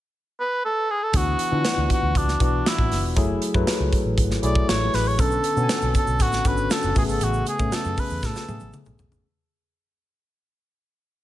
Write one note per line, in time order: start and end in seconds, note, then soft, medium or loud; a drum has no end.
0.40 0.62 B4 medium
0.65 0.92 A4 medium
0.90 1.04 G#4 medium
1.03 1.18 A4 medium
1.13 1.33 D2 medium
1.13 1.42 E3 medium
1.13 1.43 B3 medium
1.13 1.43 D4 medium
1.13 1.43 F#4 medium
1.13 1.91 F#4 medium
1.13 kick loud
1.13 closed hi-hat medium
1.39 closed hi-hat medium
1.51 1.62 D3 medium
1.51 2.19 E3 medium
1.51 2.19 B3 medium
1.51 2.19 D4 medium
1.51 1.58 F4 medium
1.58 2.23 F#4 medium
1.64 snare medium
1.64 closed hi-hat medium
1.77 1.87 D2 medium
1.90 2.19 F#4 medium
1.90 kick medium
1.90 closed hi-hat medium
2.03 2.12 D2 medium
2.15 2.35 C#2 medium
2.15 2.41 D4 medium
2.15 kick medium
2.15 closed hi-hat medium
2.28 snare soft
2.40 2.60 B1 medium
2.40 2.98 E3 medium
2.40 2.98 B3 medium
2.40 2.99 D4 medium
2.40 2.69 D4 medium
2.40 2.99 F#4 medium
2.40 kick medium
2.40 closed hi-hat medium
2.66 3.05 E4 medium
2.66 snare loud
2.66 closed hi-hat medium
2.78 2.88 A1 medium
2.78 kick medium
2.91 3.04 F#1 medium
2.91 snare soft
2.91 open hi-hat medium
3.04 3.17 E1 medium
3.16 3.36 F#1 medium
3.16 3.45 F#3 medium
3.16 3.45 A3 medium
3.16 3.46 E4 medium
3.16 3.46 G#4 medium
3.16 kick loud
3.16 closed hi-hat medium
3.42 closed hi-hat medium
3.54 3.64 F#2 medium
3.54 4.22 F#3 medium
3.54 4.22 A3 medium
3.54 4.22 E4 medium
3.54 4.22 B4 medium
3.54 kick medium
3.67 snare loud
3.67 closed hi-hat medium
3.80 3.90 C#2 medium
3.93 kick medium
3.93 closed hi-hat medium
4.05 4.15 A1 medium
4.18 4.37 G#1 medium
4.18 kick medium
4.18 closed hi-hat medium
4.31 snare soft
4.42 4.62 B1 medium
4.42 5.01 F#3 medium
4.42 5.01 A3 medium
4.42 5.01 E4 medium
4.42 5.01 G#4 medium
4.42 4.70 D5 medium
4.42 closed hi-hat medium
4.55 kick medium
4.68 4.88 A1 medium
4.68 4.96 C#5 loud
4.68 snare loud
4.68 closed hi-hat medium
4.94 5.19 A1 medium
4.94 5.09 B4 medium
4.94 snare soft
4.94 open hi-hat medium
5.08 5.22 C#5 medium
5.18 5.38 B1 medium
5.18 5.47 D3 medium
5.18 5.47 B3 medium
5.18 5.48 C#4 medium
5.18 5.48 A4 medium
5.18 5.95 A4 medium
5.18 kick loud
5.18 closed hi-hat loud
5.18 shaker medium
5.31 shaker soft
5.44 closed hi-hat medium
5.44 shaker soft
5.56 5.66 B2 medium
5.56 6.24 D3 medium
5.56 6.24 B3 medium
5.56 6.25 C#4 medium
5.56 5.63 F#4 medium
5.56 shaker soft
5.63 6.28 G#5 medium
5.69 snare loud
5.69 closed hi-hat medium
5.69 shaker medium
5.82 5.92 B1 medium
5.82 shaker soft
5.94 6.23 A4 medium
5.94 kick medium
5.94 closed hi-hat medium
5.94 shaker medium
6.07 6.20 B1 medium
6.07 shaker soft
6.20 6.40 A1 medium
6.20 6.48 F#4 medium
6.20 kick medium
6.20 closed hi-hat medium
6.20 shaker medium
6.32 snare soft
6.32 shaker soft
6.45 6.65 G#1 medium
6.45 6.96 D3 medium
6.45 6.95 B3 medium
6.45 6.96 C#4 medium
6.45 6.96 F#4 medium
6.45 6.74 B4 medium
6.45 kick loud
6.45 closed hi-hat medium
6.45 shaker soft
6.57 shaker soft
6.70 6.97 A4 medium
6.70 snare loud
6.70 closed hi-hat medium
6.70 shaker medium
6.82 6.93 F#1 medium
6.82 shaker medium
6.95 7.09 A1 medium
6.95 7.47 C#3 medium
6.95 7.47 A3 medium
6.95 7.47 B3 medium
6.95 7.03 F#4 medium
6.95 7.03 G#4 medium
6.95 kick medium
6.95 open hi-hat medium
6.95 shaker soft
7.03 7.50 G#4 medium
7.09 7.19 G#1 medium
7.09 7.25 A4 medium
7.09 shaker soft
7.21 7.41 A1 medium
7.21 7.48 F#4 medium
7.21 closed hi-hat medium
7.21 shaker medium
7.33 shaker soft
7.46 7.76 G#4 medium
7.46 closed hi-hat medium
7.46 shaker soft
7.59 7.69 A2 medium
7.59 8.27 C#3 medium
7.59 8.27 A3 medium
7.59 8.27 B3 medium
7.59 8.28 C#4 medium
7.59 kick medium
7.59 shaker soft
7.72 8.01 A4 medium
7.72 snare loud
7.72 closed hi-hat medium
7.72 shaker medium
7.84 7.95 F#2 medium
7.84 shaker soft
7.97 8.27 B4 medium
7.97 kick medium
7.97 open hi-hat medium
7.97 shaker soft
8.10 8.20 E2 medium
8.10 shaker soft
8.22 8.33 A2 medium
8.22 8.75 A4 medium
8.22 kick medium
8.22 snare medium
8.22 shaker medium
8.35 snare medium
8.35 shaker soft
8.48 8.58 A2 medium
8.48 8.54 B2 medium
8.48 9.06 A3 medium
8.48 9.07 B3 medium
8.48 9.07 G#4 medium
8.48 high tom medium
8.48 shaker soft
8.54 9.09 C#3 medium
8.60 8.71 A1 medium
8.60 high tom medium
8.60 shaker soft
8.73 mid tom medium
8.73 shaker medium
8.85 8.96 B1 medium
8.85 mid tom medium
8.85 shaker medium
8.99 floor tom medium
8.99 shaker soft
9.12 9.22 G#1 medium
9.12 floor tom medium
9.12 shaker soft